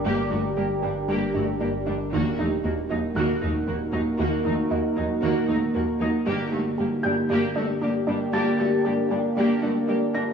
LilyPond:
<<
  \new Staff \with { instrumentName = "Felt piano" } { \time 4/4 \key g \minor \tempo 4 = 116 d'''2~ d'''8 r4. | r2 ges'''2~ | ges'''4 r2. | r4. g'''2~ g'''8 |
<a'' a'''>2. r8 bes'''8 | }
  \new Staff \with { instrumentName = "Ambient pad" } { \time 4/4 \key g \minor <g d' g' bes'>1 | <bes ees' ges' bes'>1~ | <bes ees' ges' bes'>1 | <bes d' g' bes'>1~ |
<bes d' g' bes'>1 | }
  \new Staff \with { instrumentName = "Synth arpeggio sound" } { \time 4/4 \key g \minor g8 g'8 g'8 g'8 g8 d'8 d'8 d'8 | ees8 ees'8 ees'8 ees'8 ees8 bes8 bes8 bes8 | ees8 ees'8 ees'8 ees'8 ees8 bes8 bes8 bes8 | g8 g'8 g'8 g'8 g8 d'8 d'8 d'8 |
g8 g'8 g'8 g'8 g8 d'8 d'8 d'8 | }
  \new Staff \with { instrumentName = "Viola section" } { \time 4/4 \key g \minor <bes g'>8 <a fis'>8 <bes g'>8 <g d'>8 <bes g'>8 <a fis'>8 <bes g'>8 <g d'>8 | <bes ges'>8 <a ees'>8 <bes ges'>8 <ges ees'>8 <bes ges'>8 <a ees'>8 <bes ges'>8 <ges ees'>8 | <bes ges'>8 <a ees'>8 <bes ges'>8 <ges ees'>8 <bes ges'>8 <a ees'>8 <bes ges'>8 <ges ees'>8 | <bes g'>8 <a fis'>8 <bes g'>8 <g d'>8 <bes g'>8 <a fis'>8 <bes g'>8 <g d'>8 |
<bes g'>8 <a fis'>8 <bes g'>8 <g d'>8 <bes g'>8 <a fis'>8 <bes g'>8 <g d'>8 | }
  \new Staff \with { instrumentName = "Cello section" } { \clef bass \time 4/4 \key g \minor g,8 g,8 g,8 g,8 g,8 g,8 g,8 g,8 | ees,8 ees,8 ees,8 ees,8 ees,8 ees,8 ees,8 ees,8 | ees,8 ees,8 ees,8 ees,8 ees,8 ees,8 ees,8 ees,8 | g,8 g,8 g,8 g,8 g,8 g,8 g,8 g,8 |
g,8 g,8 g,8 g,8 g,8 g,8 g,8 g,8 | }
  \new Staff \with { instrumentName = "Sub bass" } { \clef bass \time 4/4 \key g \minor g,,1 | ees,,1~ | ees,,1 | g,,1~ |
g,,1 | }
>>